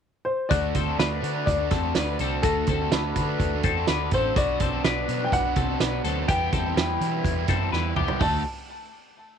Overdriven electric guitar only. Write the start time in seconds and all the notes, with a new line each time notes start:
0.50 D3 A3 D4 F#4
0.86 A3 D4 F#4
1.21 D3 A3 D4 F#4
1.58 A3 D4 F#4
1.83 A3 D4 F#4
2.19 D3 A3 D4 F#4
2.43 D3 A3 D4 F#4
2.81 A3 D4 F#4
3.17 D3 A3 D4 F#4
3.53 A3 D4 F#4
3.76 A3 D4 F#4
4.12 D3 A3 D4 F#4
4.34 F#3 B3 D4 F#4
4.72 B3 D4 F#4
5.08 B2 F#3 B3 D4 F#4
5.45 B3 D4 F#4
5.69 B3 D4 F#4
6.05 F#3 B3 D4 F#4
6.29 E3 G3 B3 E4
6.66 E3 G3 B3 E4
7.01 E2 B2 E3 G3 B3 E4
7.36 E3 G3 B3 E4
7.61 E3 G3 B3 E4
7.96 E3 G3 B3 E4
8.21 D3 A3 D4 F#4